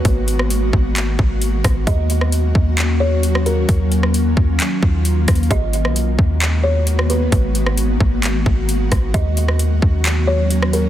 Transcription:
0.00 1.83 D#3 medium
0.00 1.83 G#3 medium
0.00 9.10 A#3 medium
0.00 1.83 B3 medium
0.00 1.83 F#4 medium
0.05 0.71 G#1 loud
0.05 kick loud
0.05 closed hi-hat medium
0.28 closed hi-hat medium
0.39 cross-stick loud
0.50 closed hi-hat medium
0.73 1.17 G#1 loud
0.73 kick medium
0.96 clap loud
0.96 closed hi-hat medium
1.19 1.62 G#1 loud
1.19 kick medium
1.42 closed hi-hat medium
1.64 1.86 G#1 loud
1.64 kick loud
1.64 cross-stick loud
1.64 closed hi-hat medium
1.87 2.52 D#2 loud
1.87 10.89 D#3 medium
1.87 5.47 F#3 medium
1.87 5.47 C#4 medium
1.87 3.67 F#4 medium
1.87 2.30 D#5 loud
1.87 kick loud
1.87 closed hi-hat medium
2.10 closed hi-hat medium
2.21 cross-stick loud
2.32 closed hi-hat medium
2.55 3.65 D#2 loud
2.55 kick medium
2.78 clap loud
2.78 closed hi-hat medium
3.00 3.43 C#5 medium
3.23 closed hi-hat medium
3.35 cross-stick loud
3.46 3.68 A#4 medium
3.46 closed hi-hat medium
3.69 4.34 D#2 loud
3.69 5.49 F4 medium
3.69 kick loud
3.69 closed hi-hat medium
3.92 closed hi-hat medium
4.03 cross-stick loud
4.14 closed hi-hat medium
4.37 4.59 D#2 loud
4.37 kick medium
4.60 clap loud
4.60 closed hi-hat medium
4.83 5.26 D#2 loud
4.83 kick medium
5.05 closed hi-hat medium
5.28 5.50 D#2 loud
5.28 kick loud
5.28 cross-stick loud
5.28 closed hi-hat medium
5.35 closed hi-hat medium
5.43 closed hi-hat soft
5.50 5.86 G#1 loud
5.50 9.11 G#3 medium
5.50 9.11 B3 medium
5.50 10.89 F#4 medium
5.50 5.94 D#5 loud
5.50 kick loud
5.50 closed hi-hat medium
5.73 closed hi-hat medium
5.85 6.17 B1 loud
5.85 cross-stick loud
5.96 closed hi-hat medium
6.19 7.28 D#2 loud
6.19 kick medium
6.41 clap loud
6.41 closed hi-hat medium
6.63 7.07 C#5 medium
6.87 closed hi-hat medium
6.99 cross-stick loud
7.10 7.31 B4 medium
7.10 closed hi-hat medium
7.32 7.98 G#1 loud
7.32 kick loud
7.32 closed hi-hat medium
7.55 closed hi-hat medium
7.67 cross-stick loud
7.78 closed hi-hat medium
8.00 8.44 G#1 loud
8.00 kick medium
8.23 clap loud
8.23 closed hi-hat medium
8.46 8.90 G#1 loud
8.46 kick loud
8.69 closed hi-hat medium
8.92 9.13 G#1 loud
8.92 kick medium
8.92 cross-stick loud
8.92 closed hi-hat medium
9.14 9.80 D#2 loud
9.14 10.89 F#3 medium
9.14 10.89 A#3 medium
9.14 10.89 C#4 medium
9.14 9.57 D#5 loud
9.14 kick loud
9.14 closed hi-hat medium
9.37 closed hi-hat medium
9.48 cross-stick loud
9.59 closed hi-hat medium
9.82 10.89 D#2 loud
9.82 kick medium
10.05 clap loud
10.05 closed hi-hat medium
10.27 10.70 C#5 medium
10.50 closed hi-hat medium
10.63 cross-stick loud
10.73 10.89 A#4 medium
10.73 closed hi-hat medium

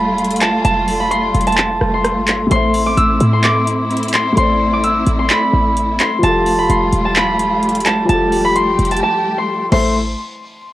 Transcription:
0.00 0.61 E1 loud
0.00 2.47 G3 medium
0.00 6.19 A3 medium
0.00 2.47 F4 medium
0.00 0.41 A5 medium
0.00 1.00 B5 medium
0.18 closed hi-hat soft
0.25 closed hi-hat medium
0.31 closed hi-hat medium
0.36 closed hi-hat medium
0.41 0.64 A5 medium
0.41 clap loud
0.41 closed hi-hat medium
0.65 1.32 F1 loud
0.65 1.47 A5 loud
0.65 closed hi-hat medium
0.88 open hi-hat medium
1.00 1.17 B5 medium
1.11 1.93 C6 loud
1.11 closed hi-hat medium
1.35 1.79 F1 loud
1.35 closed hi-hat medium
1.41 closed hi-hat medium
1.47 1.58 A5 medium
1.47 closed hi-hat medium
1.52 closed hi-hat medium
1.58 3.03 A5 medium
1.58 clap loud
1.81 2.18 F1 loud
1.81 cross-stick medium
1.94 2.51 C6 medium
2.04 cross-stick medium
2.04 closed hi-hat medium
2.17 2.49 G1 loud
2.27 clap loud
2.27 closed hi-hat medium
2.47 4.31 A3 medium
2.47 4.33 A4 medium
2.51 2.96 A1 loud
2.51 6.19 C4 medium
2.51 6.19 E4 medium
2.51 4.34 C5 medium
2.51 3.33 C6 loud
2.51 closed hi-hat medium
2.56 4.36 E5 medium
2.74 open hi-hat medium
2.86 3.43 D6 medium
2.97 3.20 A1 loud
2.97 4.11 E6 medium
2.97 closed hi-hat medium
3.20 4.33 A2 loud
3.20 closed hi-hat medium
3.33 4.13 C6 medium
3.44 4.66 D6 medium
3.44 clap loud
3.44 closed hi-hat medium
3.67 closed hi-hat medium
3.91 closed hi-hat soft
3.97 closed hi-hat medium
4.03 closed hi-hat medium
4.08 closed hi-hat medium
4.13 4.37 C6 medium
4.13 clap medium
4.13 closed hi-hat medium
4.33 6.17 A3 medium
4.33 6.19 A4 medium
4.37 5.04 A1 loud
4.37 6.20 C5 medium
4.37 5.19 C6 loud
4.37 closed hi-hat medium
4.42 6.22 D5 medium
4.73 5.95 D6 medium
4.84 5.97 E6 medium
4.84 closed hi-hat medium
5.07 5.29 A1 loud
5.07 closed hi-hat medium
5.19 5.36 C6 medium
5.30 6.06 B5 medium
5.30 clap loud
5.30 closed hi-hat medium
5.53 5.98 A1 loud
5.77 closed hi-hat medium
6.00 6.65 C6 medium
6.00 clap loud
6.00 closed hi-hat medium
6.19 8.03 F3 medium
6.19 8.05 F4 medium
6.23 6.68 F1 loud
6.23 9.68 G3 medium
6.23 9.68 A3 medium
6.23 8.07 F4 medium
6.23 8.06 G4 medium
6.23 7.05 A5 loud
6.23 closed hi-hat medium
6.28 8.08 A4 medium
6.46 open hi-hat medium
6.59 6.76 B5 medium
6.70 6.92 F1 loud
6.70 7.22 C6 medium
6.70 closed hi-hat medium
6.93 8.05 E1 loud
6.93 closed hi-hat medium
7.05 7.85 A5 medium
7.16 8.44 B5 medium
7.16 clap loud
7.16 closed hi-hat medium
7.39 closed hi-hat medium
7.63 closed hi-hat soft
7.69 closed hi-hat medium
7.75 closed hi-hat medium
7.80 closed hi-hat medium
7.86 8.09 A5 medium
7.86 clap loud
7.86 closed hi-hat medium
8.05 9.67 F3 medium
8.05 9.68 F4 medium
8.05 8.42 A5 loud
8.09 8.76 F1 loud
8.09 9.70 G4 medium
8.09 closed hi-hat medium
8.14 9.70 A4 medium
8.32 open hi-hat medium
8.45 8.54 B5 medium
8.55 8.89 C6 loud
8.55 closed hi-hat medium
8.79 9.01 F1 loud
8.79 closed hi-hat medium
8.85 closed hi-hat medium
8.91 9.01 A5 medium
8.91 closed hi-hat medium
8.97 closed hi-hat medium
9.03 9.36 A5 medium
9.38 9.70 C6 medium
9.72 10.15 A1 loud
9.72 9.93 A3 medium
9.72 9.93 E4 medium
9.72 9.93 A4 medium
9.72 9.93 C5 medium
9.72 9.93 E5 loud
9.72 9.94 C6 medium
9.72 crash medium

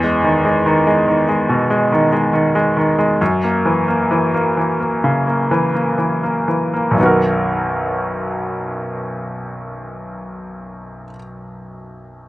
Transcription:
0.00 3.17 E2 medium
0.00 0.44 G#3 soft
0.24 0.64 D#3 soft
0.45 0.85 G#3 soft
0.66 1.06 D#3 soft
0.87 1.27 G#3 soft
1.07 1.91 D#3 soft
1.29 1.69 G#3 soft
1.49 3.17 B2 medium
1.70 2.11 G#3 soft
1.92 2.32 D#3 soft
2.12 2.54 G#3 soft
2.33 2.75 D#3 soft
2.55 2.97 G#3 soft
2.77 3.19 D#3 soft
2.99 3.20 G#3 soft
3.21 6.92 F#2 medium
3.44 3.87 A#3 soft
3.65 4.09 E3 soft
3.88 4.33 A#3 soft
4.11 4.56 E3 soft
4.34 4.79 A#3 soft
4.57 5.50 E3 soft
4.80 5.25 A#3 soft
5.04 6.95 C#3 soft
5.27 5.73 A#3 soft
5.51 5.96 E3 soft
5.74 6.22 A#3 soft
5.98 6.46 E3 soft
6.23 6.72 A#3 soft
6.48 6.97 E3 soft
6.74 6.98 A#3 soft
6.91 11.02 B1 soft
6.91 11.05 F#2 soft
6.97 11.08 D#3 soft
6.97 11.11 B3 soft
7.03 11.14 F#4 soft
7.03 11.17 A#4 soft

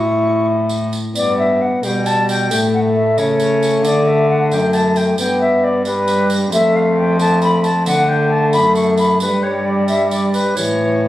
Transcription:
0.00 0.93 A2 medium
0.00 0.93 E4 medium
0.00 0.46 C#6 medium
0.69 tambourine medium
0.93 tambourine medium
1.15 1.79 G2 medium
1.15 1.86 B3 medium
1.15 1.36 D5 medium
1.15 tambourine medium
1.38 1.63 E5 medium
1.61 1.82 F#5 medium
1.83 2.52 B2 medium
1.83 2.51 G3 medium
1.83 2.08 G5 medium
1.83 tambourine soft
2.06 2.28 A5 medium
2.06 tambourine medium
2.29 2.50 G5 medium
2.29 tambourine medium
2.51 3.19 A2 medium
2.51 5.15 A3 medium
2.51 2.57 G5 loud
2.51 tambourine medium
2.74 2.80 F#5 medium
2.96 3.19 E5 medium
3.18 3.84 C#3 medium
3.18 3.85 C#5 medium
3.18 tambourine soft
3.40 tambourine soft
3.62 tambourine soft
3.85 4.53 D3 medium
3.85 4.08 D5 medium
3.85 tambourine medium
4.07 4.28 E5 medium
4.29 4.50 F#5 medium
4.51 5.18 F#2 medium
4.51 4.75 G5 medium
4.51 tambourine soft
4.73 4.98 A5 medium
4.73 tambourine soft
4.96 5.17 G5 medium
4.96 tambourine soft
5.18 6.49 G2 medium
5.18 5.84 B3 medium
5.18 5.40 G5 loud
5.18 tambourine medium
5.41 5.65 E5 medium
5.64 5.85 D5 medium
5.85 6.51 G3 medium
5.85 6.28 B4 medium
5.85 tambourine soft
6.08 tambourine medium
6.30 tambourine medium
6.52 7.88 F2 medium
6.52 7.16 A3 medium
6.52 6.77 E5 loud
6.52 tambourine medium
6.75 6.97 F5 medium
6.98 7.20 G5 medium
7.19 7.69 A3 medium
7.19 7.42 A5 loud
7.19 tambourine medium
7.42 7.63 B5 medium
7.42 tambourine medium
7.64 7.86 A5 medium
7.64 tambourine medium
7.86 8.55 D3 medium
7.86 9.18 A3 medium
7.86 8.10 F#5 loud
7.86 tambourine medium
8.08 8.30 G5 medium
8.30 8.52 A5 medium
8.53 9.22 F#2 medium
8.53 8.75 B5 loud
8.53 tambourine soft
8.75 8.97 C#6 medium
8.75 tambourine soft
8.97 9.20 B5 medium
8.97 tambourine soft
9.20 10.58 G2 medium
9.20 10.54 G3 medium
9.20 9.44 B4 medium
9.20 tambourine medium
9.43 9.66 C#5 medium
9.65 9.87 D5 medium
9.88 10.10 E5 medium
9.88 tambourine soft
10.11 10.33 D5 medium
10.11 tambourine medium
10.33 10.57 B4 medium
10.33 tambourine soft
10.56 11.08 A2 medium
10.56 11.08 E3 medium
10.56 11.08 C#5 medium
10.56 tambourine medium

